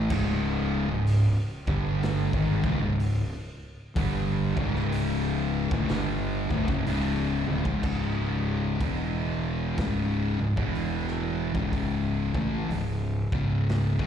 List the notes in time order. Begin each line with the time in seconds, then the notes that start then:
Already playing: A2 E3 A3
0.10 C#1 C#2 G#2 C#3, kick, crash
0.88 C#1 C#2 G#2
1.07 open hi-hat
1.67 G1 G2 D3 G3, kick
2.03 snare, open hi-hat
2.33 G#1 G#2 D#3, kick
2.64 C#1 C#2 G#2, kick
2.81 C#1 C#2 G#2
3.00 open hi-hat
3.96 G1 G2 D3 G3, kick, open hi-hat
4.56 C#1 C#2 G#2 C#3, kick
4.76 snare
4.92 open hi-hat
5.71 D1 D2 A2, kick
5.89 G1 G2 D3 G3, snare, open hi-hat
6.50 D1 D2 A2, kick
6.68 F#1 F#2 C#3, kick
6.86 C#1 C#2 G#2 C#3, open hi-hat
7.47 D1 D2 A2, high tom
7.65 C#1 C#2 G#2, kick
7.83 C#1 C#2 G#2 C#3, kick, crash
8.80 E1 E2 B2 E3, kick, open hi-hat
9.77 C#1 C#2 G#2 C#3, kick, snare, open hi-hat
10.38 C#1 C#2 G#2
10.57 E1 E2 B2 E3, kick
10.75 open hi-hat
11.07 snare
11.54 C#1 C#2 G#2 C#3, kick
11.73 kick, open hi-hat
12.34 A1 A2 E3 A3, kick
12.70 C#1 C#2 G#2, open hi-hat
13.32 C#1 C#2 G#2 C#3, kick
13.69 snare, open hi-hat
13.99 G#1 G#2 D#3 G#3, kick